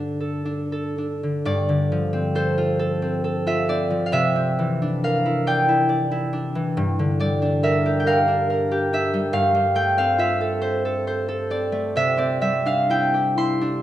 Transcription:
Already playing: G2 D3 D4 A4 A#4 D5
0.20 A4
0.45 D4
0.72 A4
0.98 D4
1.23 D3
1.45 G2 D5
1.69 D3
1.92 F3
2.13 C4
2.35 A4 C5
2.58 F4
2.79 A4
3.02 C4
3.24 A4
3.47 F4 E5
3.69 C4 D5
3.90 F3
4.06 F5
4.12 C3 E5
4.36 C4
4.59 E3
4.82 D4
5.04 A#4 F5
5.26 E4
5.47 D5 G5
5.69 E4
5.89 D5
6.11 E4
6.33 D4
6.55 E3
6.77 G2
6.99 D3
7.20 G3 D5
7.42 D4
7.63 A#4 E5
7.86 G4
8.00 G5
8.06 A#4 F5
8.28 D4
8.50 A#4
8.71 G4
8.93 D4 E5
9.14 G3
9.33 G2 F5
9.55 G3
9.75 A3 G5
9.98 C4 F5
10.18 F4 E5
10.41 A4
10.62 C5
10.85 A4
11.07 C5
11.29 A4
11.50 C4 D5
11.72 A3
11.96 C3 E5
12.17 C4 D5
12.41 G3 E5
12.66 D4 F5
12.90 E4 G5
13.14 G4
13.37 E4 C6
13.61 D4

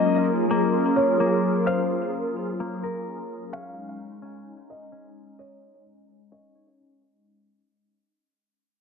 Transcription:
Already playing: F#3 A#3 C#4 F4 G#4 A#4 D#5
0.51 A#3
0.96 C#5
1.20 A#3
1.66 C5 F5
2.60 A#3
2.83 A#4
3.53 G#3 C#4 D#4 F5
4.22 C#4
4.70 D#5
4.92 C#4
5.39 C#5 D#5
6.32 C#4 D#5
6.55 C#5

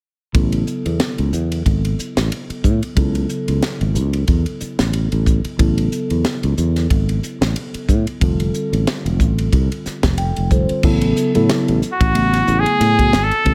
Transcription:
0.33 A1 C#3 F#3 B3 E4 A4, kick, ride
0.52 ride
0.67 hi-hat pedal
0.86 E2, ride
1.00 snare, ride
1.18 C#2, ride
1.33 E2, hi-hat pedal
1.52 ride
1.66 G#1, kick, ride
1.85 ride
1.99 muted fretless electric bass stroke, hi-hat pedal
2.17 A1, snare, ride
2.32 ride
2.50 muted fretless electric bass stroke, ride
2.64 A2, kick, hi-hat pedal
2.83 ride
2.95 C#2 C#3 F#3 B3 E4 A4, kick, ride
3.15 ride
3.29 hi-hat pedal
3.48 C#2, ride
3.62 snare, ride
3.81 G#1, ride
3.95 C#2, hi-hat pedal
4.13 ride
4.28 E2, kick, ride
4.46 ride
4.60 muted fretless electric bass stroke, hi-hat pedal
4.79 A1, snare, ride
4.93 ride
5.12 A1, ride
5.26 kick, hi-hat pedal
5.45 muted fretless electric bass stroke, ride
5.57 A1 C#3 F#3 B3 E4 A4, kick, ride
5.78 ride
5.92 hi-hat pedal
6.10 E2, ride
6.25 snare, ride
6.43 C#2, ride
6.57 E2, hi-hat pedal
6.76 snare, ride
6.90 G#1, kick, ride
7.09 ride
7.23 muted fretless electric bass stroke, hi-hat pedal
7.41 A1, snare, ride
7.56 ride
7.74 muted fretless electric bass stroke, ride
7.89 A2, kick, hi-hat pedal
8.07 ride
8.20 F1 D3 G3 C4 F4 A4, kick, ride
8.40 ride
8.54 hi-hat pedal
8.73 A1, ride
8.87 snare, ride
9.05 E1, ride
9.20 A1, kick, hi-hat pedal
9.38 ride
9.53 C2, kick, ride
9.72 ride
9.86 muted fretless electric bass stroke, snare, hi-hat pedal
10.03 F1, kick, snare, ride
10.18 G5, ride
10.36 F1, ride
10.51 D3 G3 C4 F4 A4 C5, kick, hi-hat pedal
10.69 muted fretless electric bass stroke, ride
10.83 A1 C#3 F#3 B3 E4 A4, kick, crash
11.01 ride
11.17 hi-hat pedal
11.34 A2 C#3 F#3 B3 E4 A4, ride
11.49 snare, ride
11.68 A1, ride
11.81 E4, hi-hat pedal
11.93 F#4
12.00 A1, kick, ride
12.13 C#3 F#3 A3 B3 E4, ride
12.33 snare, ride
12.48 A1, hi-hat pedal
12.59 G#4
12.66 ride
12.80 A2, snare, ride
12.98 C#3 F#3 B3 E4 F#4, kick, ride
13.12 G#1 E4 F#4, snare, hi-hat pedal
13.23 A4
13.31 ride
13.45 A1 C#3 F#3 B3 E4 A4, kick, ride

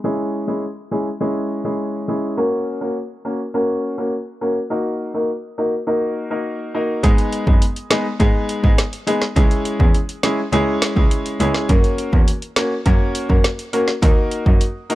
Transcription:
0.04 G#3 C#4 E4 G#4
0.48 G#3 C#4 E4 G#4
0.91 G#3 C#4 E4 G#4
1.21 G#3 C#4 E4 G#4
1.64 G#3 C#4 E4 G#4
2.08 G#3 C#4 E4 G#4
2.37 A#3 C#4 F#4 A#4
2.81 A#3 C#4 F#4 A#4
3.25 A#3 C#4 F#4 A#4
3.54 A#3 C#4 F#4 A#4
3.98 A#3 C#4 F#4 A#4
4.41 A#3 C#4 F#4 A#4
4.70 A#3 D#4 F#4 A#4
5.14 A#3 D#4 F#4 A#4
5.58 A#3 D#4 F#4 A#4
5.87 A#3 D#4 F#4 A#4
6.30 A#3 D#4 F#4 A#4
6.74 A#3 D#4 F#4 A#4
7.03 G#2 G#3 B3 D#4 G#4, kick, closed hi-hat
7.18 closed hi-hat
7.33 closed hi-hat
7.47 F#2 G#3 B3 D#4 G#4, kick
7.62 closed hi-hat
7.76 closed hi-hat
7.90 G#3 B3 D#4 G#4, snare, closed hi-hat
8.20 G#2 G#3 B3 D#4 G#4, kick, closed hi-hat
8.49 closed hi-hat
8.63 G#2 G#3 B3 D#4 G#4, kick
8.78 snare, closed hi-hat
8.93 closed hi-hat
9.07 G#3 B3 D#4 G#4, closed hi-hat
9.22 snare
9.36 C#2 G#3 C#4 E4 G#4, kick, closed hi-hat
9.51 closed hi-hat
9.65 closed hi-hat
9.80 E2 G#3 C#4 E4 G#4, kick
9.95 closed hi-hat
10.09 closed hi-hat
10.23 G#3 C#4 E4 G#4, snare, closed hi-hat
10.52 C#2 G#3 C#4 E4 G#4, closed hi-hat
10.82 snare, closed hi-hat
10.96 C#2 G#3 C#4 E4 G#4, kick
11.11 closed hi-hat
11.26 closed hi-hat
11.40 C#2 G#3 C#4 E4 G#4, closed hi-hat
11.54 snare
11.69 F#2 A#3 C#4 F#4 A#4, kick, closed hi-hat
11.84 closed hi-hat
11.98 closed hi-hat
12.13 E2 A#3 C#4 F#4 A#4, kick
12.28 closed hi-hat
12.42 closed hi-hat
12.56 A#3 C#4 F#4 A#4, snare, closed hi-hat
12.86 F#2 A#3 C#4 F#4 A#4, kick, closed hi-hat
13.15 closed hi-hat
13.29 F#2 A#3 C#4 F#4 A#4, kick
13.44 snare, closed hi-hat
13.59 closed hi-hat
13.73 A#3 C#4 F#4 A#4, closed hi-hat
13.88 snare
14.02 D#2 A#3 D#4 F#4 A#4, kick, closed hi-hat
14.31 closed hi-hat
14.46 F#2 A#3 D#4 F#4 A#4, kick
14.61 closed hi-hat
14.90 A#3 D#4 F#4 A#4, closed hi-hat

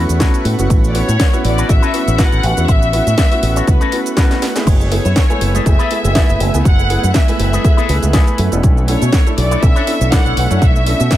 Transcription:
Already playing: A3 B3 C#4 E4 F#4 F#5 B5 C#6
0.09 E2, closed hi-hat, shaker
0.19 B3 C#4 E4 F#4 A4 B4, kick, snare, closed hi-hat, shaker
0.34 closed hi-hat, shaker
0.45 A2, open hi-hat
0.58 F#1 B3 C#4 E4 F#4, closed hi-hat, shaker
0.70 A1, muted clean electric guitar stroke, kick, closed hi-hat, shaker
0.84 muted clean electric guitar stroke, shaker
0.89 D5
0.94 B3 C#4 E4 F#4 C#5, muted clean electric guitar stroke, open hi-hat
1.08 A2, muted clean electric guitar stroke, closed hi-hat, shaker
1.20 kick, snare, closed hi-hat, shaker
1.33 B3 C#4 E4 F#4, closed hi-hat, shaker
1.44 A1 D5, open hi-hat
1.58 C#4 F#4 A4 B4, closed hi-hat, shaker
1.69 A1 B3 C#4 E4 F#4 E5, kick, closed hi-hat, shaker
1.82 C#4 F#4 A4 B4, closed hi-hat, shaker
1.94 B3 C#4 E4 F#4, open hi-hat
2.08 A1, closed hi-hat, shaker
2.18 B3 C#4 E4 F#4 A4 B4 F#5, kick, snare, closed hi-hat, shaker
2.32 A1, closed hi-hat, shaker
2.43 A1, open hi-hat
2.57 E2 B3 C#4 E4 F#4, closed hi-hat, shaker
2.68 A1 E5, muted clean electric guitar stroke, kick, closed hi-hat, shaker
2.82 muted clean electric guitar stroke, shaker
2.93 B3 C#4 E4 F#4, muted clean electric guitar stroke, open hi-hat
3.07 A2, muted clean electric guitar stroke, closed hi-hat, shaker
3.18 kick, snare, closed hi-hat, shaker
3.31 B3 C#4 E4 F#4, open hi-hat, shaker
3.43 A1, open hi-hat
3.56 C#4 F#4 A4 C#5, closed hi-hat, shaker
3.67 C#2 B3 C#4 E4 F#4 B4, kick, closed hi-hat, shaker
3.81 C#4 F#4 A4 B4, closed hi-hat, shaker
3.92 B3 C#4 E4 F#4, open hi-hat
4.06 closed hi-hat, shaker
4.16 B3 C#4 E4 F#4 A4 B4, kick, snare, closed hi-hat, shaker
4.31 snare, closed hi-hat, shaker
4.42 snare, open hi-hat
4.55 A3 B3 E4 G#4, snare, closed hi-hat, shaker
4.66 F#1 F#3 A3 C#5 G#5 E6, muted clean electric guitar stroke, kick, closed hi-hat, crash, shaker
4.80 G#3, muted clean electric guitar stroke, shaker
4.91 A3 B3 E4 G#4, muted clean electric guitar stroke, open hi-hat
5.05 F#2 B3, muted clean electric guitar stroke, closed hi-hat, shaker
5.16 A3, muted clean electric guitar stroke, kick, snare, closed hi-hat, shaker
5.29 G#3 A3 B3 E4 G#5, closed hi-hat, shaker
5.41 F#1 F#3, open hi-hat
5.54 G#3 E4 G#4 A4 B4, closed hi-hat, shaker
5.65 F#1 A3 B3 E4 G#4 E5, kick, closed hi-hat, shaker
5.79 B3 E4 G#4 A4 B4, closed hi-hat, shaker
5.90 A3 B3 E4 G#4, open hi-hat
6.04 F#1 G#3, closed hi-hat, shaker
6.15 F#3 A3 B3 E4 G#4 A4 B4 G#5, kick, snare, closed hi-hat, shaker
6.29 F#1 A3, closed hi-hat, shaker
6.40 F#1 A3, open hi-hat
6.53 C#2 A3 B3 E4 G#5, closed hi-hat, shaker
6.65 F#1 F#3 F#5 F#6, muted clean electric guitar stroke, kick, closed hi-hat, shaker
6.78 G#3, muted clean electric guitar stroke, shaker
6.89 A3 B3 E4 G#4, muted clean electric guitar stroke, open hi-hat
7.03 F#2 B3, muted clean electric guitar stroke, closed hi-hat, shaker
7.14 A3 E5, kick, snare, closed hi-hat, shaker
7.28 G#3 A3 B3 E4 G#5, open hi-hat, shaker
7.39 F#1 F#3, open hi-hat
7.52 G#3 E4 G#4 A4 B4, closed hi-hat, shaker
7.64 A3 B3 E4 G#4, kick, closed hi-hat, shaker
7.77 B3 E4 G#4 A4 B4, closed hi-hat, shaker
7.89 C#2 A3 B3 E4 G#4, open hi-hat
8.03 C#2 G#3, closed hi-hat, shaker
8.13 F#3 A3 B3 E4 G#4 A4 B4 G#5, kick, snare, closed hi-hat, shaker
8.27 A3, closed hi-hat, shaker
8.38 F#2 A3, open hi-hat
8.52 E1 B3 C#4 D4 E4 A4, closed hi-hat, shaker
8.63 B1 F#3 E5 C#6, muted clean electric guitar stroke, kick, closed hi-hat, shaker
8.77 A3, muted clean electric guitar stroke, shaker
8.88 B3 C#4 D4 E4 A4 C#5, muted clean electric guitar stroke, open hi-hat
9.02 B2 C#4, muted clean electric guitar stroke, closed hi-hat, shaker
9.13 B3, muted clean electric guitar stroke, kick, snare, closed hi-hat, shaker
9.26 A3 D4 E4 A4, closed hi-hat, shaker
9.38 B1 F#3 D5, open hi-hat
9.51 A3 D4 E4 A4 C#5, closed hi-hat, shaker
9.62 B1 B3 C#4 D4 E4 A4 E5, kick, closed hi-hat, shaker
9.76 C#4 D4 E4 A4 C#5, closed hi-hat, shaker
9.87 B3 C#4 D4 E4 A4, open hi-hat
10.01 B1 A3, closed hi-hat, shaker
10.12 F#3 D4 E4 A4 C#5 F#5, kick, snare, closed hi-hat, shaker
10.26 B1 B3, closed hi-hat, shaker
10.37 B1 B3, open hi-hat
10.50 F#2 C#4 D4 E4 A4 C#5, closed hi-hat, shaker
10.62 B1 F#3 E5, muted clean electric guitar stroke, kick, closed hi-hat, shaker
10.75 A3, muted clean electric guitar stroke, shaker
10.86 B3 C#4 D4 E4 A4, muted clean electric guitar stroke, open hi-hat
11.00 B2 C#4, muted clean electric guitar stroke, closed hi-hat, shaker
11.11 B3, kick, snare, closed hi-hat, shaker

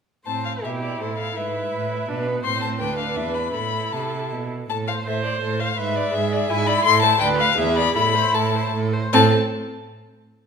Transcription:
0.26 A2 C4 C5 A5
0.45 F5
0.64 B2 E4 G4 E5
0.83 D5
1.00 A2 A4 C5
1.18 F5
1.36 G#2 E4 B4 E5
1.73 A2
2.09 B2 D4 B4
2.27 B3
2.43 A2 C4 C5 C6
2.62 A5
2.79 D2 D4 B4 G5
2.98 F5
3.16 E2 B4 E5
3.35 B5
3.54 A2 E4 A4 B5
3.93 C3 A5
4.32 B2
4.69 A2 A4 A5
4.88 C5 F5
5.06 A2 A4 C5 E5
5.24 C5 D5
5.42 A2 A4 C5
5.59 C5 F5
5.78 G#2 B4 E5
5.96 D5
6.14 G#2 G#4 E5
6.33 D5
6.49 G#2 E4 E5 G#5
6.67 D5 B5
6.85 A2 A4 C6
7.02 C5 A5
7.20 D2 B4 D5 G5
7.39 B4 F5
7.58 E2 G#4 E5
7.76 D5 B5
7.95 A2 E4 A4 B5
8.15 C5
8.34 A2 A4 A5
8.55 C5
8.74 A2 A4
8.94 C5
9.13 A2 C4 A4 A5

